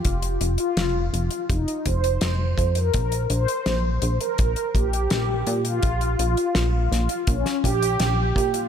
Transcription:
<<
  \new Staff \with { instrumentName = "Analog polysynth" } { \time 4/4 \key bes \dorian \tempo 4 = 83 f'8. f'4~ f'16 ees'8 c''4~ c''16 bes'16 | bes'8 c''4~ c''16 bes'16 bes'8 g'4~ g'16 f'16~ | f'4. f'8 des'8 g'4~ g'16 f'16 | }
  \new Staff \with { instrumentName = "Analog synth bass" } { \clef bass \time 4/4 \key bes \dorian f,,8 f,,8 f,,8 f,,8 f,,8 f,,8 f,,8 f,8 | bes,,8 bes,,8 bes,,8 bes,,8 bes,,8 bes,,8 bes,,8 bes,8 | bes,,8 bes,,8 bes,,8 bes,,8 bes,,8 bes,,8 bes,,8 bes,8 | }
  \new DrumStaff \with { instrumentName = "Drums" } \drummode { \time 4/4 <hh bd>16 hh16 hh16 hh16 <hh sn>8 hh16 hh16 <hh bd>16 hh16 <hh bd>16 hh16 <hh sn>8 <hh bd>16 hh16 | <hh bd>16 hh16 hh16 hh16 <hh sn>8 hh16 hh16 <hh bd>16 hh16 <hh bd>16 hh16 <hh sn>8 hh16 hh16 | <hh bd>16 hh16 hh16 hh16 <hh sn>8 <hh sn>16 hh16 <hh bd>16 <hh sn>16 <hh bd>16 hh16 <hh sn>8 <hh bd>16 hh16 | }
>>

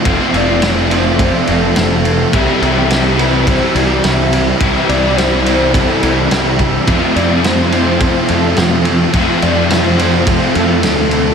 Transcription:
<<
  \new Staff \with { instrumentName = "Soft synth lead" } { \time 4/4 \key f \lydian \tempo 4 = 106 r8 d''8 c''8 c''8 c''8 a'8 a'8 a'8 | g'4. b'8 c''8 d''8 e''8. r16 | r8 d''8 c''8 c''8 a'4 g'8. r16 | r8 d''8 c''8 c''8 c''8 a'8 f'8. r16 |
r8 d''8 c''8 c''8 c''8 a'8 a'8 a'8 | }
  \new Staff \with { instrumentName = "Distorted electric guitar" } { \time 4/4 \key f \lydian <f a c' f'>8 <f a c' f'>8 <f a c' f'>8 <f a c' f'>8 <f a c' f'>8 <f a c' f'>8 <f a c' f'>8 <f a c' f'>8 | <c e g c' e'>8 <c e g c' e'>8 <c e g c' e'>8 <c e g c' e'>8 <c e g c' e'>8 <c e g c' e'>8 <c e g c' e'>8 <c e g c' e'>8 | <c e g c' e'>8 <c e g c' e'>8 <c e g c' e'>8 <c e g c' e'>8 <c e g c' e'>8 <c e g c' e'>8 <c e g c' e'>8 <c e g c' e'>8 | <f a c' f'>8 <f a c' f'>8 <f a c' f'>8 <f a c' f'>8 <f a c' f'>8 <f a c' f'>8 <f a c' f'>8 <f a c' f'>8 |
<f a c' f'>8 <f a c' f'>8 <f a c' f'>8 <f a c' f'>8 <f a c' f'>8 <f a c' f'>8 <f a c' f'>8 <f a c' f'>8 | }
  \new Staff \with { instrumentName = "Overdriven electric guitar" } { \clef bass \time 4/4 \key f \lydian <f, c f a c' f'>1 | <c e g c' e'>1 | <c e g c' e'>1 | <f, c f a c' f'>1 |
<f, c f a c' f'>1 | }
  \new Staff \with { instrumentName = "Overdriven electric guitar" } { \clef bass \time 4/4 \key f \lydian <f, c f a c' f'>4. <f, c f a c' f'>2~ <f, c f a c' f'>8 | <c e g c' e'>4. <c e g c' e'>2~ <c e g c' e'>8 | <c e g c' e'>4. <c e g c' e'>2~ <c e g c' e'>8 | <f, c f a c' f'>4. <f, c f a c' f'>2~ <f, c f a c' f'>8 |
<f, c f a c' f'>4. <f, c f a c' f'>2~ <f, c f a c' f'>8 | }
  \new Staff \with { instrumentName = "Picked electric bass" } { \clef bass \time 4/4 \key f \lydian f,,16 r16 f,,2 f,,8 f,,4 | c,16 r16 c,2 c,8 c,4 | c,16 r16 c,2 c,8 c,4 | f,16 r16 f,2 f,8 f,4 |
f,16 r16 f,2 f,8 d,4 | }
  \new DrumStaff \with { instrumentName = "Drums" } \drummode { \time 4/4 <bd cymr>8 cymr8 <cymr sn>8 cymr8 <bd cymr>8 cymr8 <cymr sn>8 cymr8 | <bd cymr>8 cymr8 <cymr sn>8 cymr8 <bd cymr>8 cymr8 <cymr sn>8 cymr8 | <bd cymr>8 cymr8 <cymr sn>8 cymr8 <bd cymr>8 cymr8 <cymr sn>8 <bd cymr>8 | <bd cymr>8 cymr8 <cymr sn>8 cymr8 <bd cymr>8 cymr8 <cymr sn>8 cymr8 |
<bd cymr>8 cymr8 <cymr sn>8 cymr8 <bd cymr>8 cymr8 <cymr sn>8 cymr8 | }
>>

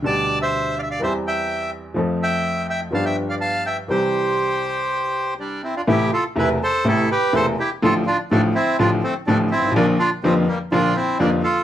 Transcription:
<<
  \new Staff \with { instrumentName = "Bandoneon" } { \time 4/4 \key c \major \tempo 4 = 124 << { a''8. e''8. f''32 e''32 f''16 e''8 g''4 r8 | r8 g''4 g''8 a''16 g''8 f''16 a''8 g''8 | c''2. d'8 e'16 f'16 | \key a \minor g'8 a'8 b'8 c''8 a'8 b'8 c''8 g'8 |
a'8 f'8 d'8 e'8 f'8 c'8 d'8 e'8 | d'8 f'8 c'8 bes8 f'8 e'8 d'8 a'8 | } \\ { d''8. c''8. d''16 d''16 c''8 e''4 r8 | r8 e''4 e''8 f''16 e''8 d''16 f''8 e''8 | g'2. g8 c'16 d'16 | e'8 f'8 e'8 a'8 e'8 g'8 a'8 e'8 |
f'8 d'8 a8 c'8 d'8 a8 a8 c'8 | bes8 d'8 f8 g8 d'8 c'8 bes8 f'8 | } >> }
  \new Staff \with { instrumentName = "Upright piano" } { \clef bass \time 4/4 \key c \major <d, b, d g g'>2 <e, e g c' g'>2 | <f, f a c' a'>2 <g,, g, f b d' g'>2 | <c, c e g c' g'>1 | \key a \minor <a,, a, c e a e'>8 r8 <e,, e, c e a e'>8 r8 <a,, a, c e a e'>8 r8 <e,, e, c e a e'>8 r8 |
<a,, a, d f a f'>8 r8 <a,, a, d f a f'>8 r8 <a,, a, d f a f'>8 r8 <a,, a, d f a f'>8 r32 g,,32 gis,,32 a,,32 | <bes,, bes, d f bes f'>8 r8 <f,, f, d f bes f'>8 r8 <bes,, bes, d f bes f'>8 r8 <f,, f, d f bes f'>8 r8 | }
>>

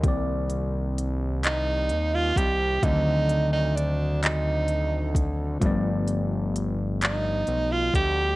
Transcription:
<<
  \new Staff \with { instrumentName = "Tenor saxophone" } { \time 6/8 \key c \dorian \tempo 4. = 43 r4. ees'8. f'16 g'8 | ees'8. ees'16 d'8 ees'4 r8 | r4. ees'8. f'16 g'8 | }
  \new Staff \with { instrumentName = "Tine electric piano" } { \time 6/8 \key c \dorian <ees g bes c' d''>2. | <d ees fis a c'>2. | <f g a b d''>2. | }
  \new Staff \with { instrumentName = "Analog synth bass" } { \clef bass \time 6/8 \key c \dorian c,2 ees,8 c,8 | d,2. | g,,2 b,,8 d,8 | }
  \new DrumStaff \with { instrumentName = "Drums" } \drummode { \time 6/8 <hh bd>8 hh8 hh8 <hc hh>8 hh8 <hh bd>8 | <hh bd>8 hh8 hh8 <hc hh>8 hh8 <hh bd>8 | <hh bd>8 hh8 hh8 <hc hh>8 hh8 <hh bd>8 | }
>>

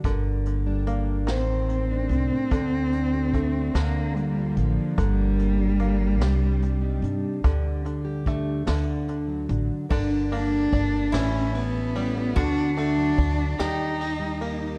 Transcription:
<<
  \new Staff \with { instrumentName = "Resonator guitar played with a steel bar" } { \time 6/8 \key g \minor \tempo 4. = 49 r2. | r2. | r2. | r2. |
d'4. e'4. | fis'4. g'4. | }
  \new Staff \with { instrumentName = "Steel-string acoustic guitar" } { \time 6/8 \key g \minor << { bes'8 bes16 d'16 bes8 c''8 c'16 d'16 c'8 | a'8 d'16 fis'16 d'8 bes'8 bes16 d'16 bes8 | bes'8 bes16 d'16 bes8 g'8 d'16 ees'16 d'8 | g'8 d'16 g'16 d'8 a'8 d'16 fis'16 d'8 |
bes'16 d'8. bes16 d'16 <a cis' e' g'>16 e'8. cis'16 e'16 | a'16 fis'8. d'16 fis'16 g'16 ees'8. bes16 ees'16 | } \\ { g,8. g8. a,8. a8. | d8. a8. d8. f8. | g,8. g8. c8. g8. | d8. g8. d8. fis8. |
g,8. g8. a,8. a8. | d8. fis8. ees8. g8. | } >> }
  \new Staff \with { instrumentName = "Cello" } { \time 6/8 \key g \minor r4. c'4.~ | c'4. bes8 g8 f8 | g2. | r2. |
r8 d'4 cis'8 b4 | d'8 d'4 ees'4 r8 | }
  \new Staff \with { instrumentName = "Five-string banjo" } { \clef bass \time 6/8 \key g \minor d4 bes8 ees4. | d4 a8 d4. | d4 bes8 g4. | d4 a8 d4. |
d8 bes8 d'8 e4 g8 | d8 a8 d'8 g4 bes8 | }
  \new Staff \with { instrumentName = "Upright bass" } { \clef bass \time 6/8 \key g \minor g,,4. a,,4 c,16 r16 | d,4. d,4 a,,16 r16 | g,,4. c,4 g,16 r16 | d,4. d,4 a,,16 r16 |
g,,4 g,,8 a,,4. | d,4 d,8 ees,4. | }
  \new DrumStaff \with { instrumentName = "Drums" } \drummode { \time 6/8 <hh bd>8 hh8 hh8 <hh sn>8 hh8 hh8 | <hh bd>8 hh8 <hh bd>8 <hh sn>8 hh8 hh8 | <hh bd>8 hh8 hh8 <hh sn>8 hh8 hh8 | <hh bd>8 hh8 <hh bd>8 <hh sn>8 hh8 hh8 |
<bd cymr>8 cymr8 <bd cymr>8 <cymr sn>8 cymr8 cymr8 | <bd cymr>8 cymr8 <bd cymr>8 <cymr sn>8 cymr8 cymr8 | }
>>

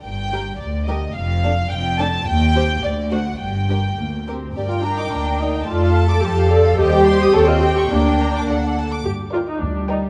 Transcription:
<<
  \new Staff \with { instrumentName = "Violin section" } { \time 2/4 \key g \minor \tempo 4 = 107 g''4 d''8 ees''8 | f''4 g''8 a''8 | g''4 d''8 fis''8 | g''4. r8 |
g''2 | a''2 | g''2~ | g''4 fis''8 r8 |
r8 g''8 r8 g''8 | }
  \new Staff \with { instrumentName = "Violin section" } { \time 2/4 \key g \minor << { r8 <g' bes'>8 r8 <g' bes'>8 | r8 <d' a'>8 r8 <d' a'>8 | r8 <g' c''>8 r8 <fis' c''>8 | r8 <g' bes'>8 r8 <g' bes'>8 |
d''16 g''16 bes''16 d'''16 bes''16 g''16 d''16 g''16 | d''16 f''16 a''16 d'''16 a''16 f''16 d''16 f''16 | ees''16 g''16 c'''16 ees'''16 des''16 ees''16 g''16 des'''16 | d''16 g''16 bes''16 d'''16 d''16 fis''16 a''16 d'''16 |
r8 d''8 r8 d''8 | } \\ { r2 | r2 | r2 | r2 |
bes'2 | a'2 | c''4 des''4 | bes'4 a'8 r8 |
r8 bes'8 r8 bes'8 | } >> }
  \new Staff \with { instrumentName = "Viola section" } { \time 2/4 \key g \minor r8 <g d'>8 r8 <g d'>8 | r8 <a d'>8 r8 <a d'>8 | r8 <g c'>8 r8 <a d'>8 | r8 <g d'>8 bes8 c'8 |
g'16 f'16 d'16 ees'16 d'8 ees'8 | f'8. a'16 g'8 a'8 | g'4 a'16 f'16 g'8 | d'4. r8 |
g'8 f'16 ees'16 d'8 ees'8 | }
  \new Staff \with { instrumentName = "Cello section" } { \clef bass \time 2/4 \key g \minor g,4 d,4 | f,4 f,4 | ees,4 d,4 | g,4 d,4 |
r4 bes4 | a4 f4 | g4 c'4 | bes4. r8 |
r4 g4 | }
  \new Staff \with { instrumentName = "Double bass section" } { \clef bass \time 2/4 \key g \minor g,,4 d,4 | f,,4 f,,4 | ees,4 d,4 | g,,4 d,4 |
g,4 d,4 | f,4 f,4 | ees,4 ees,4 | d,4 d,4 |
g,4 d,4 | }
>>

